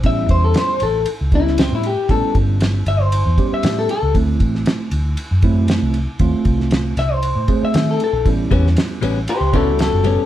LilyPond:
<<
  \new Staff \with { instrumentName = "Clean electric guitar" } { \time 4/4 \key a \mixolydian \tempo 4 = 117 e''8 c''16 a'16 c''8 a'8 r8 e'8 c'16 e'16 g'8 | a'8 r4 e''16 c''4 e''8 a'16 a'8 | r1 | r4. e''16 bis'4 e''8 a'16 a'8 |
r2 <g' c''>8 <e' a'>8 a'4 | }
  \new Staff \with { instrumentName = "Tine electric piano" } { \time 4/4 \key a \mixolydian <g b cis' e'>4. r4 <g b cis' e'>4 r8 | <g b cis' e'>4. r4 <g b cis' g'>4 r8 | <fis a c' e'>4. r4 <fis a c' e'>4 r8 | <fis a bis f'>4. r4 <fis a bis gis'>4 r8 |
<g b cis' e'>4. r4 <g b cis' fis'>4 r8 | }
  \new Staff \with { instrumentName = "Clean electric guitar" } { \time 4/4 \key a \mixolydian r1 | r1 | r1 | r1 |
r8 <a, g b cis'>8 r8 <a, g b cis'>8 r8 <a, g b cis'>8 r8 <a, g b cis'>8 | }
  \new Staff \with { instrumentName = "Fingered electric bass" } { \clef bass \time 4/4 \key a \mixolydian a,,8 e,8 r8 a,,8 r16 cis,4 a,8 r16 | a,16 r16 g,,4 g,,8. e,16 r8 a,8 r16 cis,16 | d,8 a,,8 r8 d,8 r16 fis,4 c,8 r16 | dis,16 r16 bis,,4 bis,,8. a,16 r8 dis8 r16 bes,,16 |
a,,8 e,8 r8 a,,8 r16 cis,4 fis,,8 r16 | }
  \new DrumStaff \with { instrumentName = "Drums" } \drummode { \time 4/4 <bd cymr>8 <bd cymr>8 <cymr sn>8 cymr8 cymr8 <bd cymr>16 sn16 <cymr sn>8 cymr8 | <bd cymr>8 <bd cymr>8 <cymr sn>8 cymr8 cymr8 <bd cymr>8 <cymr sn>8 cymr8 | <bd cymr>8 <bd cymr>16 sn16 <cymr sn>8 cymr8 cymr8 <bd cymr>8 <cymr sn>8 cymr8 | <bd cymr>8 <bd cymr>16 sn16 <cymr sn>8 <cymr sn>8 cymr8 <bd cymr>8 <cymr sn>8 cymr8 |
<bd cymr>8 <bd cymr>16 sn16 <cymr sn>8 cymr8 cymr8 <bd cymr>8 <cymr sn>8 cymr8 | }
>>